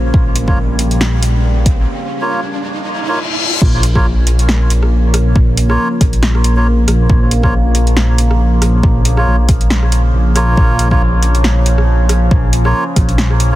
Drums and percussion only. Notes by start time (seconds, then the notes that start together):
0.14 kick
0.36 closed hi-hat
0.48 kick
0.79 closed hi-hat
0.91 closed hi-hat
1.01 snare
1.23 closed hi-hat
1.66 kick, closed hi-hat
3.62 kick, crash
3.83 closed hi-hat
3.95 kick, cross-stick
4.27 closed hi-hat
4.39 closed hi-hat
4.49 snare
4.70 closed hi-hat
4.83 cross-stick
5.14 cross-stick, closed hi-hat
5.36 kick
5.57 closed hi-hat
5.70 cross-stick
6.01 kick, cross-stick, closed hi-hat
6.13 closed hi-hat
6.23 snare
6.35 cross-stick
6.44 closed hi-hat
6.88 cross-stick, closed hi-hat
7.10 kick
7.31 closed hi-hat
7.43 kick, cross-stick
7.75 closed hi-hat
7.87 closed hi-hat
7.97 snare
8.18 closed hi-hat
8.31 cross-stick
8.62 cross-stick, closed hi-hat
8.83 kick
9.05 closed hi-hat
9.17 cross-stick
9.49 kick, cross-stick, closed hi-hat
9.61 closed hi-hat
9.70 snare
9.83 cross-stick
9.92 closed hi-hat
10.36 cross-stick, closed hi-hat
10.57 kick
10.79 closed hi-hat
10.91 kick, cross-stick
11.23 closed hi-hat
11.35 closed hi-hat
11.44 snare
11.66 closed hi-hat
11.78 cross-stick
12.09 cross-stick, closed hi-hat
12.31 kick
12.53 closed hi-hat
12.65 cross-stick
12.96 kick, cross-stick, closed hi-hat
13.09 closed hi-hat
13.18 snare
13.30 cross-stick
13.40 closed hi-hat